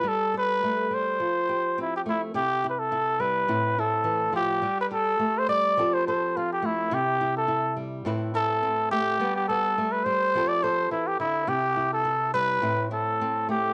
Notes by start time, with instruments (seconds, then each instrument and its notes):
0.03 nylon-string guitar G3
0.08 muted trumpet A4
0.34 nylon-string guitar A4, muted trumpet B4
0.64 nylon-string guitar A3
0.90 nylon-string guitar G3, muted trumpet C5
1.20 nylon-string guitar F3
1.49 nylon-string guitar G4
1.78 nylon-string guitar C4, muted trumpet E4
1.96 muted trumpet G4
2.06 nylon-string guitar A3, muted trumpet E4
2.34 nylon-string guitar C3 E4, muted trumpet G4
2.64 nylon-string guitar E4
2.70 muted trumpet B4
2.79 muted trumpet A4
2.92 nylon-string guitar E4
3.20 nylon-string guitar G3, muted trumpet B4
3.48 nylon-string guitar A2 C4 E4
3.78 nylon-string guitar E4, muted trumpet A4
4.04 nylon-string guitar E3
4.33 nylon-string guitar F3, muted trumpet G4
4.62 nylon-string guitar G3
4.81 muted trumpet B4
4.91 nylon-string guitar G4, muted trumpet A4
5.19 nylon-string guitar A3
5.38 muted trumpet C5
5.49 nylon-string guitar G3, muted trumpet D5
5.77 nylon-string guitar F3 C4 G4 A4
5.94 muted trumpet C5
6.07 nylon-string guitar A4, muted trumpet C5
6.37 nylon-string guitar C4, muted trumpet F4
6.52 muted trumpet G4
6.62 nylon-string guitar A3, muted trumpet E4
6.91 nylon-string guitar C3 E4, muted trumpet G4
7.21 nylon-string guitar E4
7.37 muted trumpet A4
7.48 nylon-string guitar E4
7.76 nylon-string guitar G3
8.05 nylon-string guitar A2 C4 E4 B4
8.34 nylon-string guitar E4, muted trumpet A4
8.63 nylon-string guitar C4
8.91 nylon-string guitar A3, muted trumpet G4
9.20 nylon-string guitar G3 B3
9.36 muted trumpet G4
9.48 nylon-string guitar B3, muted trumpet A4
9.78 nylon-string guitar A3
9.92 muted trumpet B4
10.05 nylon-string guitar G3, muted trumpet C5
10.35 nylon-string guitar F3 C4 G4 A4
10.48 muted trumpet D5
10.63 nylon-string guitar A4, muted trumpet C5
10.91 nylon-string guitar E3, muted trumpet E4
11.07 muted trumpet G4
11.20 nylon-string guitar D3, muted trumpet E4
11.47 nylon-string guitar C3 E4, muted trumpet G4
11.76 nylon-string guitar E4
11.93 muted trumpet A4
12.05 nylon-string guitar E4
12.34 nylon-string guitar G3, muted trumpet B4
12.62 nylon-string guitar A2 C4 E4
12.91 nylon-string guitar E4, muted trumpet A4
13.21 nylon-string guitar C4
13.49 nylon-string guitar A3, muted trumpet G4